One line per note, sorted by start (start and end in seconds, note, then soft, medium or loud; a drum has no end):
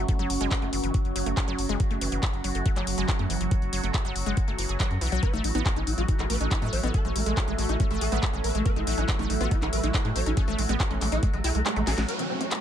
0.00 12.07 F#3 medium
0.00 6.01 C#4 medium
0.00 6.16 F#4 medium
0.00 12.07 F#4 medium
0.00 6.39 F#5 medium
0.00 5.84 C#6 medium
0.09 0.15 A3 medium
0.09 kick loud
0.09 closed hi-hat soft
0.19 0.26 F#1 medium
0.19 0.28 F#3 loud
0.19 closed hi-hat soft
0.30 0.37 F#1 loud
0.30 open hi-hat loud
0.41 0.48 F#1 medium
0.41 0.44 G#3 loud
0.41 closed hi-hat medium
0.51 kick loud
0.51 clap loud
0.51 closed hi-hat medium
0.62 0.69 F#1 medium
0.62 0.68 A3 medium
0.62 closed hi-hat soft
0.73 0.80 F#1 loud
0.73 0.76 E3 medium
0.73 open hi-hat loud
0.84 0.91 F#1 medium
0.84 0.90 E3 medium
0.84 closed hi-hat medium
0.94 kick loud
0.94 closed hi-hat medium
1.05 1.12 F#1 medium
1.05 closed hi-hat soft
1.16 1.23 F#1 loud
1.16 1.25 F#3 medium
1.16 open hi-hat loud
1.26 1.33 F#1 medium
1.26 1.32 A3 medium
1.26 closed hi-hat medium
1.37 1.43 A3 medium
1.37 kick loud
1.37 clap loud
1.37 closed hi-hat medium
1.48 1.55 F#1 medium
1.48 1.57 F#3 loud
1.48 closed hi-hat soft
1.59 1.66 F#1 loud
1.59 open hi-hat medium
1.69 1.76 F#1 loud
1.69 1.73 G#3 loud
1.69 closed hi-hat medium
1.80 kick loud
1.80 closed hi-hat medium
1.91 1.98 F#1 medium
1.91 1.97 A3 medium
1.91 closed hi-hat soft
2.01 2.08 F#1 loud
2.01 2.05 E3 medium
2.01 open hi-hat loud
2.12 2.19 F#1 medium
2.12 2.18 E3 medium
2.12 closed hi-hat medium
2.23 kick loud
2.23 clap loud
2.23 closed hi-hat soft
2.33 2.41 F#1 medium
2.33 closed hi-hat soft
2.44 2.51 F#1 loud
2.44 2.53 F#3 medium
2.44 open hi-hat medium
2.55 2.62 F#1 loud
2.55 2.61 A3 medium
2.55 closed hi-hat soft
2.66 2.72 A3 medium
2.66 kick loud
2.66 closed hi-hat medium
2.76 2.83 F#1 loud
2.76 2.85 F#3 loud
2.76 clap soft
2.76 closed hi-hat soft
2.87 2.94 F#1 loud
2.87 open hi-hat loud
2.98 3.05 F#1 medium
2.98 3.01 G#3 loud
2.98 closed hi-hat soft
3.09 kick loud
3.09 clap loud
3.09 closed hi-hat medium
3.19 3.26 F#2 medium
3.19 3.25 A3 medium
3.19 closed hi-hat soft
3.30 3.37 F#1 loud
3.30 3.34 E3 medium
3.30 open hi-hat medium
3.41 3.48 F#1 medium
3.41 3.47 E3 medium
3.41 closed hi-hat medium
3.51 kick loud
3.51 closed hi-hat soft
3.62 3.69 F#1 medium
3.62 closed hi-hat soft
3.73 3.80 F#1 loud
3.73 3.82 F#3 medium
3.73 open hi-hat loud
3.83 3.91 F#1 medium
3.83 3.90 A3 medium
3.83 closed hi-hat medium
3.94 4.00 A3 medium
3.94 kick loud
3.94 clap loud
3.94 closed hi-hat soft
4.05 4.12 F#1 medium
4.05 4.14 F#3 loud
4.05 closed hi-hat soft
4.16 4.23 F#1 loud
4.16 open hi-hat medium
4.26 4.33 F#1 loud
4.26 4.30 G#3 loud
4.26 closed hi-hat soft
4.37 kick loud
4.37 closed hi-hat medium
4.48 4.55 F#1 medium
4.48 4.54 A3 medium
4.48 closed hi-hat soft
4.58 4.66 F#1 loud
4.58 4.65 E3 medium
4.58 open hi-hat loud
4.69 4.76 F#1 medium
4.69 4.78 G#4 medium
4.69 closed hi-hat soft
4.80 4.84 F#3 loud
4.80 kick loud
4.80 clap loud
4.80 closed hi-hat soft
4.91 4.98 F#2 medium
4.91 closed hi-hat soft
5.01 5.08 B1 loud
5.01 5.05 E3 loud
5.01 open hi-hat medium
5.12 5.19 B1 medium
5.12 5.21 F#3 loud
5.12 closed hi-hat medium
5.23 12.09 A3 medium
5.23 5.29 C#4 medium
5.23 5.27 B4 loud
5.23 kick loud
5.23 closed hi-hat soft
5.33 5.41 A1 medium
5.33 5.43 A3 loud
5.33 5.38 E4 medium
5.33 closed hi-hat soft
5.44 5.51 A1 loud
5.44 5.49 E4 medium
5.44 open hi-hat loud
5.55 5.62 A1 medium
5.55 5.59 B3 loud
5.55 5.59 E4 medium
5.55 closed hi-hat soft
5.59 12.61 E6 medium
5.66 kick loud
5.66 clap loud
5.66 closed hi-hat soft
5.76 5.83 A1 medium
5.76 5.82 C#4 medium
5.76 5.81 E4 medium
5.76 12.61 A4 medium
5.76 closed hi-hat soft
5.87 5.94 A1 loud
5.87 5.92 E4 medium
5.87 open hi-hat medium
5.98 6.05 A1 medium
5.98 6.04 G#3 medium
5.98 6.02 F#4 medium
5.98 closed hi-hat soft
6.08 6.13 E4 medium
6.08 kick loud
6.08 closed hi-hat medium
6.19 6.26 A1 loud
6.19 6.23 G#3 medium
6.19 6.24 E4 medium
6.19 clap soft
6.19 closed hi-hat soft
6.30 6.37 A1 loud
6.30 6.39 A3 medium
6.30 6.34 B4 medium
6.30 12.61 E5 medium
6.30 open hi-hat loud
6.41 6.48 A1 medium
6.41 6.47 C#4 medium
6.41 6.45 E4 medium
6.41 closed hi-hat medium
6.51 6.57 C#4 medium
6.51 6.56 E4 medium
6.51 kick loud
6.51 clap loud
6.51 closed hi-hat soft
6.62 6.69 A2 medium
6.62 6.71 A3 loud
6.62 6.67 E4 medium
6.62 closed hi-hat soft
6.73 6.80 A1 loud
6.73 6.77 C#5 loud
6.73 open hi-hat medium
6.83 6.91 A1 loud
6.83 6.87 B3 loud
6.83 6.88 E4 medium
6.83 closed hi-hat soft
6.94 6.99 A4 loud
6.94 kick loud
6.94 closed hi-hat soft
7.05 7.12 A1 medium
7.05 7.09 A3 medium
7.05 7.11 C#4 medium
7.05 closed hi-hat soft
7.16 7.23 A1 loud
7.16 7.20 A3 medium
7.16 open hi-hat loud
7.26 7.33 A1 medium
7.26 7.32 G#3 medium
7.26 7.31 A3 medium
7.26 closed hi-hat medium
7.37 kick loud
7.37 clap loud
7.37 closed hi-hat medium
7.48 7.55 A1 medium
7.48 7.51 G#3 medium
7.48 7.52 A3 medium
7.48 closed hi-hat soft
7.58 7.66 A1 loud
7.58 7.68 A3 medium
7.58 7.63 A3 medium
7.58 open hi-hat medium
7.69 7.76 A1 medium
7.69 7.75 C#4 medium
7.69 7.74 E4 medium
7.69 closed hi-hat soft
7.80 7.84 A3 medium
7.80 7.86 C#4 medium
7.80 kick loud
7.80 closed hi-hat medium
7.91 7.98 A1 medium
7.91 8.00 A3 loud
7.91 7.95 A3 medium
7.91 closed hi-hat soft
8.01 8.08 A1 loud
8.01 8.06 A4 loud
8.01 open hi-hat loud
8.12 8.19 A1 loud
8.12 8.17 A3 medium
8.12 8.16 B3 loud
8.12 closed hi-hat medium
8.23 8.27 A3 medium
8.23 kick loud
8.23 clap loud
8.23 closed hi-hat medium
8.33 8.41 A1 medium
8.33 8.38 A3 medium
8.33 8.40 C#4 medium
8.33 closed hi-hat soft
8.44 8.51 A1 loud
8.44 8.49 B4 loud
8.44 open hi-hat medium
8.55 8.62 A1 medium
8.55 8.61 G#3 medium
8.55 8.59 A3 medium
8.55 closed hi-hat medium
8.66 8.70 B4 loud
8.66 kick loud
8.66 closed hi-hat medium
8.76 8.83 A1 medium
8.76 8.80 G#3 medium
8.76 8.81 E4 medium
8.76 closed hi-hat soft
8.87 8.94 A1 loud
8.87 8.96 A3 medium
8.87 8.92 E4 medium
8.87 open hi-hat loud
8.98 9.05 A1 medium
8.98 9.04 C#4 medium
8.98 9.02 E4 medium
8.98 closed hi-hat medium
9.08 9.14 C#4 medium
9.08 kick loud
9.08 clap loud
9.08 closed hi-hat medium
9.19 9.26 A1 medium
9.19 9.28 A3 loud
9.19 9.24 E4 medium
9.19 closed hi-hat soft
9.30 9.37 A1 loud
9.30 9.34 E4 medium
9.30 open hi-hat medium
9.41 9.48 A1 loud
9.41 9.44 B3 loud
9.41 9.45 F#4 medium
9.41 closed hi-hat medium
9.51 9.56 E4 medium
9.51 kick loud
9.51 closed hi-hat medium
9.62 9.69 A1 medium
9.62 9.68 C#4 medium
9.62 9.66 E4 medium
9.62 clap soft
9.62 closed hi-hat soft
9.73 9.80 A1 loud
9.73 9.77 B4 medium
9.73 open hi-hat loud
9.83 9.91 A1 medium
9.83 9.90 G#3 medium
9.83 9.88 E4 medium
9.83 closed hi-hat medium
9.94 9.99 E4 medium
9.94 kick loud
9.94 clap loud
9.94 closed hi-hat medium
10.05 10.12 A2 medium
10.05 10.09 G#3 medium
10.05 10.09 E4 medium
10.05 closed hi-hat soft
10.16 10.23 A1 loud
10.16 10.25 A3 medium
10.16 10.20 C#5 medium
10.16 open hi-hat medium
10.26 10.33 A1 medium
10.26 10.32 C#4 medium
10.26 10.31 E4 medium
10.26 closed hi-hat medium
10.37 10.43 C#4 medium
10.37 10.41 A4 loud
10.37 kick loud
10.37 closed hi-hat medium
10.48 10.55 A1 medium
10.48 10.52 A3 medium
10.48 10.57 A3 loud
10.48 closed hi-hat soft
10.58 10.66 A1 loud
10.58 10.63 A3 medium
10.58 open hi-hat loud
10.69 10.76 A1 medium
10.69 10.74 A3 medium
10.69 10.73 B3 loud
10.69 closed hi-hat medium
10.80 kick loud
10.80 clap loud
10.80 closed hi-hat medium
10.91 10.98 A1 medium
10.91 10.95 A3 medium
10.91 10.97 C#4 medium
10.91 closed hi-hat soft
11.01 11.08 A1 loud
11.01 11.06 A3 medium
11.01 clap soft
11.01 open hi-hat medium
11.12 11.19 A1 loud
11.12 11.18 G#3 medium
11.12 11.17 E4 loud
11.12 closed hi-hat medium
11.23 11.27 A3 medium
11.23 kick loud
11.23 closed hi-hat medium
11.34 11.41 A1 medium
11.34 11.37 G#3 medium
11.34 11.38 A3 medium
11.34 closed hi-hat soft
11.44 11.51 B1 loud
11.44 11.50 E4 loud
11.44 11.49 G#4 loud
11.44 open hi-hat loud
11.55 11.62 B1 medium
11.55 11.61 A3 medium
11.55 11.59 A3 medium
11.55 closed hi-hat medium
11.66 11.72 G#3 medium
11.66 11.70 A3 medium
11.66 clap loud
11.66 closed hi-hat medium
11.76 11.83 A1 medium
11.76 11.80 A3 medium
11.76 11.81 A3 medium
11.76 closed hi-hat soft
11.87 11.94 A1 loud
11.87 11.92 A4 medium
11.87 snare medium
11.87 open hi-hat medium
11.98 12.05 A1 medium
11.98 12.04 A3 medium
11.98 12.02 A3 medium
11.98 snare medium
11.98 closed hi-hat medium
12.08 12.61 F#3 medium
12.08 12.61 C#4 medium
12.08 12.61 F#4 medium
12.08 12.13 B4 medium
12.08 closed hi-hat medium
12.08 downlifter medium
12.19 12.23 E3 medium
12.19 12.24 C#4 medium
12.19 closed hi-hat medium
12.30 12.39 F#3 medium
12.30 12.34 C#4 medium
12.41 12.47 A3 medium
12.41 12.45 C#4 medium
12.41 closed hi-hat medium
12.51 12.57 A3 medium
12.51 clap loud
12.51 closed hi-hat medium